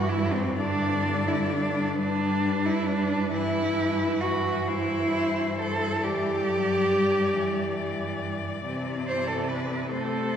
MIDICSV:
0, 0, Header, 1, 5, 480
1, 0, Start_track
1, 0, Tempo, 947867
1, 755, Tempo, 907716
1, 1708, Time_signature, 12, 3, 24, 8
1, 3155, Tempo, 867052
1, 5556, End_track
2, 0, Start_track
2, 0, Title_t, "Cello"
2, 0, Program_c, 0, 42
2, 0, Note_on_c, 0, 71, 98
2, 255, Note_off_c, 0, 71, 0
2, 279, Note_on_c, 0, 74, 90
2, 1004, Note_on_c, 0, 71, 87
2, 1012, Note_off_c, 0, 74, 0
2, 2430, Note_on_c, 0, 72, 84
2, 2438, Note_off_c, 0, 71, 0
2, 3153, Note_off_c, 0, 72, 0
2, 3156, Note_on_c, 0, 74, 84
2, 5287, Note_off_c, 0, 74, 0
2, 5311, Note_on_c, 0, 72, 70
2, 5556, Note_off_c, 0, 72, 0
2, 5556, End_track
3, 0, Start_track
3, 0, Title_t, "Cello"
3, 0, Program_c, 1, 42
3, 0, Note_on_c, 1, 66, 104
3, 46, Note_on_c, 1, 64, 114
3, 54, Note_off_c, 1, 66, 0
3, 166, Note_on_c, 1, 60, 105
3, 173, Note_off_c, 1, 64, 0
3, 279, Note_on_c, 1, 62, 125
3, 287, Note_off_c, 1, 60, 0
3, 645, Note_on_c, 1, 64, 105
3, 653, Note_off_c, 1, 62, 0
3, 771, Note_on_c, 1, 62, 106
3, 779, Note_off_c, 1, 64, 0
3, 1009, Note_off_c, 1, 62, 0
3, 1018, Note_on_c, 1, 62, 117
3, 1368, Note_on_c, 1, 64, 115
3, 1376, Note_off_c, 1, 62, 0
3, 1482, Note_on_c, 1, 62, 114
3, 1490, Note_off_c, 1, 64, 0
3, 1712, Note_off_c, 1, 62, 0
3, 1722, Note_on_c, 1, 64, 127
3, 2189, Note_on_c, 1, 66, 115
3, 2197, Note_off_c, 1, 64, 0
3, 2442, Note_on_c, 1, 64, 122
3, 2450, Note_off_c, 1, 66, 0
3, 2919, Note_on_c, 1, 69, 119
3, 2927, Note_off_c, 1, 64, 0
3, 3158, Note_on_c, 1, 67, 108
3, 3166, Note_off_c, 1, 69, 0
3, 4370, Note_off_c, 1, 67, 0
3, 4839, Note_on_c, 1, 72, 110
3, 4950, Note_on_c, 1, 69, 95
3, 4959, Note_off_c, 1, 72, 0
3, 5064, Note_on_c, 1, 71, 84
3, 5072, Note_off_c, 1, 69, 0
3, 5294, Note_off_c, 1, 71, 0
3, 5298, Note_on_c, 1, 69, 97
3, 5556, Note_off_c, 1, 69, 0
3, 5556, End_track
4, 0, Start_track
4, 0, Title_t, "Cello"
4, 0, Program_c, 2, 42
4, 0, Note_on_c, 2, 52, 91
4, 276, Note_on_c, 2, 50, 82
4, 283, Note_off_c, 2, 52, 0
4, 1008, Note_on_c, 2, 55, 93
4, 1016, Note_off_c, 2, 50, 0
4, 1706, Note_off_c, 2, 55, 0
4, 1709, Note_on_c, 2, 52, 86
4, 3133, Note_off_c, 2, 52, 0
4, 3154, Note_on_c, 2, 52, 85
4, 3393, Note_off_c, 2, 52, 0
4, 3400, Note_on_c, 2, 54, 88
4, 3642, Note_on_c, 2, 55, 91
4, 3651, Note_off_c, 2, 54, 0
4, 3877, Note_on_c, 2, 52, 84
4, 3885, Note_off_c, 2, 55, 0
4, 4606, Note_off_c, 2, 52, 0
4, 4608, Note_on_c, 2, 52, 77
4, 5308, Note_on_c, 2, 57, 69
4, 5316, Note_off_c, 2, 52, 0
4, 5556, Note_off_c, 2, 57, 0
4, 5556, End_track
5, 0, Start_track
5, 0, Title_t, "Cello"
5, 0, Program_c, 3, 42
5, 0, Note_on_c, 3, 43, 100
5, 1690, Note_off_c, 3, 43, 0
5, 1709, Note_on_c, 3, 43, 94
5, 4584, Note_off_c, 3, 43, 0
5, 4608, Note_on_c, 3, 48, 85
5, 5556, Note_off_c, 3, 48, 0
5, 5556, End_track
0, 0, End_of_file